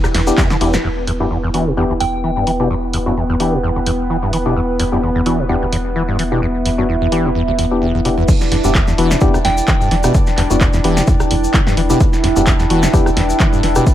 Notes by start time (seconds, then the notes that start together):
Already playing: E4 B4 G5
0.04 D2, cross-stick, maracas
0.14 E1 E2, snare, open hi-hat, ride
0.27 B3 D4 E4 G4, maracas
0.38 E2, kick, snare, clap, ride, maracas
0.50 D3, snare, maracas
0.61 E1 E2 B3 D4 E4 G4, open hi-hat, ride
0.73 E3, snare, maracas
0.84 E1 E2 B3 E4 B4
1.07 E2, open hi-hat
1.20 F#2 B3 D4 E4 G4
1.31 E2
1.37 B4
1.43 E2
1.54 E3 B3 D4 E4 F#4, open hi-hat
1.67 B2
1.77 E2 B3 D4 E4 G4
1.88 D2 G5
2.00 E2 G5, open hi-hat
2.24 E3
2.36 G2
2.47 E3, open hi-hat
2.60 B2 B3 D4 E4 G4
2.70 E2
2.93 E2, open hi-hat
3.06 F#2 B3 D4 E4 F#4
3.17 E2
3.30 E2
3.40 E3 B3 D4 E4 G4, open hi-hat
3.53 B2
3.63 E2
3.76 D2
3.86 E2, open hi-hat
4.10 E3
4.23 G2
4.33 E3, open hi-hat
4.46 B2 B3 D4 E4 G4
4.56 E2
4.80 E2, open hi-hat
4.92 F#2 B3 D4 E4 G4
5.03 E2
5.15 E2
5.26 E3 B3 D4 E4 F#4, open hi-hat
5.39 B2
5.49 E2 B3 D4 E4 G4
5.61 D2 E5
5.72 E2, open hi-hat
5.96 E3
6.08 G2
6.19 E3, open hi-hat
6.32 B2 B3 D4 E4 G4
6.42 E2
6.66 E2, open hi-hat
6.78 F#2 B3 D4 E4 F#4
6.89 E2
7.01 E2
7.12 E3 B3 D4 E4 G4, open hi-hat
7.25 B2
7.35 E2
7.48 D2
7.59 E2, open hi-hat
7.71 B3 D4 E4 G4
7.82 E2
7.94 E2
8.05 B2 B3 D4 E4 G4, open hi-hat
8.18 E2
8.28 E2 D4 D5, kick, crash, maracas
8.41 snare, maracas
8.52 E1 E2, snare, open hi-hat
8.64 E1 F#2 B3 D4 E4 G4, maracas
8.75 E2, kick, clap, maracas
8.87 E2, snare, maracas
8.98 E1 E3 B3 D4 E4 F#4, open hi-hat
9.09 B2 G5, snare, maracas
9.21 E2 B3 D4 E4 G4, kick, maracas
9.34 D2, cross-stick, maracas
9.45 E1 E2 G5, snare, open hi-hat
9.58 maracas
9.67 E3, kick, clap, maracas
9.81 G2, maracas
9.91 E1 E3, snare, open hi-hat
10.03 B2 B3 D4 E4 G4, cross-stick, maracas
10.14 E2, kick, maracas
10.27 snare, maracas
10.38 E1 E2, snare, clap, open hi-hat
10.50 E1 F#2 B3 D4 E4 F#4, maracas
10.61 E2, kick, clap, maracas
10.73 E2, snare, maracas
10.84 E1 E3 B3 D4 E4 G4, open hi-hat
10.97 B2, snare, maracas
11.07 E2, kick, maracas
11.20 D2, cross-stick, maracas
11.31 E1 E2, open hi-hat
11.44 maracas
11.54 E3, kick, clap, maracas
11.67 G2, snare, maracas
11.77 E1 E3, open hi-hat
11.90 B2 B3 D4 E4 G4, maracas
12.00 E2 E4, kick, maracas
12.13 snare, maracas
12.24 E1 E2, snare, open hi-hat
12.36 E1 F#2 B3 D4 E4 G4, maracas
12.47 E2, kick, clap, maracas
12.59 E2, snare, maracas
12.70 E1 E3 B3 D4 E4 F#4, open hi-hat
12.83 B2, snare, maracas
12.93 E2 B3 D4 E4 G4, kick, maracas
13.06 D2, cross-stick, maracas
13.17 E1 E2, snare, open hi-hat
13.30 maracas
13.40 E3, kick, clap, maracas
13.53 G2, maracas
13.63 E1 E3, snare, open hi-hat
13.75 B2 B3 D4 E4 G4, cross-stick, maracas
13.87 E2, kick, maracas